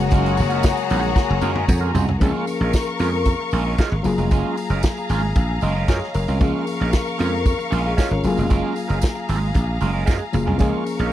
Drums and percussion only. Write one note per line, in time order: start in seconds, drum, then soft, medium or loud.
0.11 kick loud
0.11 closed hi-hat medium
0.11 tambourine medium
0.26 closed hi-hat soft
0.37 open hi-hat medium
0.37 tambourine medium
0.50 closed hi-hat soft
0.50 tambourine soft
0.63 kick loud
0.63 snare loud
0.63 tambourine loud
0.77 closed hi-hat medium
0.77 tambourine soft
0.89 open hi-hat medium
0.89 tambourine soft
1.03 closed hi-hat soft
1.16 kick loud
1.16 snare medium
1.16 tambourine medium
1.42 high tom medium
1.42 tambourine medium
1.55 high tom medium
1.68 kick loud
1.68 mid tom medium
1.68 tambourine medium
1.95 floor tom loud
1.95 tambourine medium
2.08 floor tom loud
2.21 kick loud
2.21 closed hi-hat medium
2.21 tambourine medium
2.47 open hi-hat medium
2.47 tambourine medium
2.73 kick loud
2.73 snare loud
2.73 closed hi-hat medium
2.73 tambourine loud
2.87 tambourine soft
2.99 open hi-hat medium
2.99 tambourine soft
3.25 kick medium
3.25 closed hi-hat medium
3.25 tambourine medium
3.51 open hi-hat medium
3.51 tambourine soft
3.78 kick loud
3.78 snare loud
3.78 closed hi-hat medium
3.78 tambourine medium
4.04 open hi-hat medium
4.04 tambourine medium
4.18 tambourine soft
4.31 kick loud
4.31 closed hi-hat medium
4.31 tambourine medium
4.57 open hi-hat medium
4.57 tambourine soft
4.70 tambourine soft
4.83 kick medium
4.83 snare loud
4.83 closed hi-hat medium
4.83 tambourine loud
4.97 tambourine soft
5.09 open hi-hat medium
5.09 tambourine soft
5.36 kick loud
5.36 closed hi-hat medium
5.36 tambourine medium
5.61 open hi-hat medium
5.61 tambourine soft
5.88 kick loud
5.88 snare loud
5.88 closed hi-hat medium
5.88 tambourine medium
6.03 snare soft
6.14 open hi-hat medium
6.14 tambourine medium
6.28 tambourine soft
6.41 kick loud
6.41 closed hi-hat soft
6.41 tambourine medium
6.67 open hi-hat medium
6.67 tambourine soft
6.93 kick loud
6.93 snare loud
6.93 closed hi-hat medium
6.93 tambourine loud
7.07 tambourine soft
7.19 open hi-hat medium
7.19 tambourine soft
7.45 kick loud
7.45 closed hi-hat medium
7.45 tambourine medium
7.60 tambourine soft
7.72 open hi-hat medium
7.72 tambourine soft
7.98 kick loud
7.98 snare loud
7.98 closed hi-hat medium
7.98 tambourine medium
8.24 open hi-hat medium
8.24 tambourine medium
8.37 tambourine soft
8.50 kick loud
8.50 closed hi-hat medium
8.50 tambourine soft
8.76 open hi-hat medium
8.76 tambourine soft
8.89 tambourine soft
9.02 kick loud
9.02 snare loud
9.02 closed hi-hat medium
9.02 tambourine loud
9.15 tambourine soft
9.29 open hi-hat medium
9.29 tambourine soft
9.54 kick loud
9.54 closed hi-hat medium
9.54 tambourine medium
9.81 open hi-hat medium
9.81 tambourine soft
10.07 kick loud
10.07 snare medium
10.07 tambourine medium
10.33 mid tom medium
10.33 tambourine medium
10.47 floor tom medium
10.59 kick loud
10.59 closed hi-hat medium
10.59 tambourine soft
10.86 open hi-hat medium
10.86 tambourine soft
10.99 tambourine soft